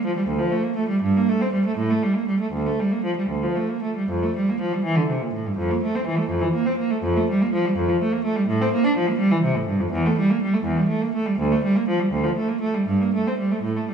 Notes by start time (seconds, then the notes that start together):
0.06 F3
0.16 G3
0.27 D2
0.38 F3
0.51 A3
0.63 A#3
0.76 A3
0.88 G3
1.02 G2
1.16 A#3
1.29 A3
1.41 C4
1.53 G3
1.66 A3
1.77 A2
1.90 A3
2.03 G3
2.15 A#3
2.28 G3
2.40 A3
2.52 D2
2.66 A3
2.79 G3
2.91 A#3
3.04 F3
3.17 G3
3.29 D2
3.43 F3
3.55 A3
3.69 A#3
3.83 A3
3.96 G3
4.09 F2
4.23 A3
4.36 G3
4.49 A#3
4.61 F3
4.73 G3
4.84 E3
4.96 D3
5.09 C3
5.22 A#2
5.33 A2
5.46 G2
5.58 F2
5.71 A#3
5.83 A3
5.95 C4
6.07 E3
6.17 A3
6.29 F2
6.41 E3
6.53 A#3
6.66 C4
6.78 A#3
6.90 A3
7.03 F2
7.16 A3
7.30 G3
7.41 A#3
7.53 F3
7.65 G3
7.76 F2
7.88 F3
8.01 A3
8.12 A#3
8.24 A3
8.36 G3
8.47 A2
8.61 C4
8.73 A#3
8.84 D4
8.97 F3
9.09 A#3
9.18 G3
9.31 E3
9.43 C3
9.55 A2
9.67 G2
9.80 F2
9.92 E2
10.06 A3
10.19 G3
10.30 A#3
10.42 G3
10.54 A3
10.64 E2
10.77 G3
10.88 A3
11.01 A#3
11.14 A3
11.26 G3
11.39 D2
11.52 A3
11.63 G3
11.76 A#3
11.88 F3
12.00 G3
12.12 D2
12.24 F3
12.36 A3
12.48 A#3
12.61 A3
12.74 G3
12.87 G2
13.01 A#3
13.14 A3
13.27 C4
13.38 G3
13.51 A3
13.62 A2
13.76 A3
13.89 G3